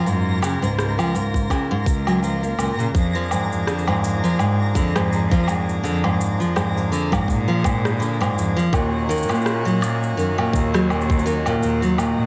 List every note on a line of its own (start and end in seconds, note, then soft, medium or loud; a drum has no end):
0.00 12.26 A#3 medium
0.00 2.90 F4 medium
0.00 12.26 A#5 medium
0.00 12.26 A#6 medium
0.06 0.54 F#2 medium
0.06 0.40 G#2 medium
0.06 2.92 A#4 medium
0.06 cabasa soft
0.42 0.60 C#3 medium
0.42 cabasa medium
0.42 low woodblock medium
0.62 1.44 C#2 medium
0.62 0.96 G#2 medium
0.62 cabasa soft
0.79 cross-stick medium
0.79 cabasa soft
0.99 1.13 F3 medium
0.99 cabasa soft
0.99 low woodblock medium
1.14 1.49 G#2 medium
1.14 cabasa medium
1.34 kick medium
1.34 cabasa soft
1.50 1.69 C#3 medium
1.50 kick medium
1.50 cabasa soft
1.50 low woodblock medium
1.71 1.85 G#2 loud
1.86 2.52 C#2 medium
1.86 kick loud
1.86 cabasa medium
2.07 2.21 F#3 medium
2.07 cabasa soft
2.07 low woodblock medium
2.22 2.41 F3 medium
2.22 cabasa soft
2.43 2.57 A#3 medium
2.43 cabasa soft
2.59 2.73 C#2 medium
2.59 2.77 A#2 medium
2.59 cabasa medium
2.59 low woodblock medium
2.78 2.90 A#2 medium
2.78 2.93 C#3 medium
2.78 cabasa soft
2.95 3.43 F2 medium
2.95 8.69 F3 medium
2.95 8.69 D4 medium
2.95 8.69 G#4 medium
2.95 kick loud
2.95 cabasa soft
3.15 3.29 F3 medium
3.31 3.66 G#2 medium
3.31 cabasa medium
3.31 low woodblock medium
3.51 4.32 F2 medium
3.51 cabasa soft
3.67 3.85 D3 medium
3.67 cross-stick medium
3.67 cabasa soft
3.78 cabasa soft
3.88 4.22 G#2 medium
3.88 low woodblock medium
4.04 cabasa medium
4.24 4.38 F3 medium
4.24 cabasa soft
4.39 4.54 G#2 medium
4.39 4.74 G#2 medium
4.39 cabasa soft
4.39 low woodblock medium
4.75 5.77 F2 loud
4.75 4.94 D3 medium
4.75 kick medium
4.75 cabasa medium
4.96 5.30 G#2 loud
4.96 cross-stick medium
4.96 cabasa soft
4.96 low woodblock medium
5.13 cabasa soft
5.32 5.46 F3 loud
5.32 kick loud
5.32 cabasa soft
5.48 5.82 G#2 medium
5.48 cabasa medium
5.48 low woodblock medium
5.69 cabasa soft
5.83 6.31 F2 medium
5.83 6.02 D3 medium
5.83 cabasa soft
6.04 6.38 G#2 medium
6.04 low woodblock medium
6.21 cabasa medium
6.40 7.22 F2 medium
6.40 6.54 F3 medium
6.40 cabasa soft
6.56 6.91 G#2 medium
6.56 cross-stick medium
6.56 cabasa soft
6.56 low woodblock medium
6.77 cabasa soft
6.92 7.10 D3 medium
6.92 cabasa medium
7.12 7.46 G#2 medium
7.12 kick soft
7.12 cabasa soft
7.12 low woodblock medium
7.28 8.30 A#2 medium
7.28 kick medium
7.28 cabasa soft
7.48 7.63 F3 loud
7.64 7.99 G#2 medium
7.64 kick medium
7.64 cabasa medium
7.64 low woodblock medium
7.85 cross-stick medium
7.85 cabasa soft
8.00 8.18 D3 medium
8.00 cabasa soft
8.21 8.55 G#2 loud
8.21 cabasa soft
8.21 low woodblock medium
8.37 8.65 F2 medium
8.37 cabasa medium
8.57 8.71 F3 loud
8.57 cabasa soft
8.73 9.21 D#2 medium
8.73 9.07 A#2 medium
8.73 12.26 D#3 medium
8.73 11.59 C#4 medium
8.73 12.26 F#4 medium
8.73 kick loud
8.73 cabasa soft
8.73 low woodblock medium
9.09 9.27 D#3 medium
9.09 cabasa medium
9.18 cabasa medium
9.23 cabasa soft
9.29 9.63 A#2 loud
9.29 10.11 A#2 medium
9.29 cabasa soft
9.29 low woodblock medium
9.35 cabasa soft
9.42 cabasa soft
9.46 cross-stick medium
9.46 cabasa soft
9.65 9.80 F#3 loud
9.65 cabasa soft
9.81 10.16 A#2 medium
9.81 cabasa medium
9.81 low woodblock medium
10.03 cabasa soft
10.17 10.32 F#2 medium
10.17 10.36 D#3 medium
10.17 cabasa soft
10.38 10.72 A#2 medium
10.38 low woodblock medium
10.53 11.55 D#2 loud
10.53 kick medium
10.53 cabasa medium
10.74 10.88 F#3 medium
10.74 cross-stick medium
10.74 cabasa soft
10.90 11.25 A#2 medium
10.90 cabasa soft
10.90 low woodblock medium
11.01 cabasa soft
11.10 kick medium
11.10 cabasa soft
11.19 cabasa soft
11.26 11.44 D#3 loud
11.26 cabasa medium
11.46 11.80 A#2 loud
11.46 cabasa soft
11.46 low woodblock medium
11.62 12.10 D#2 medium
11.62 12.26 D#4 medium
11.62 cabasa soft
11.82 11.97 F#3 medium
11.82 cabasa soft
11.98 12.26 A#2 medium
11.98 cabasa medium
11.98 low woodblock medium
12.18 12.26 A#2 medium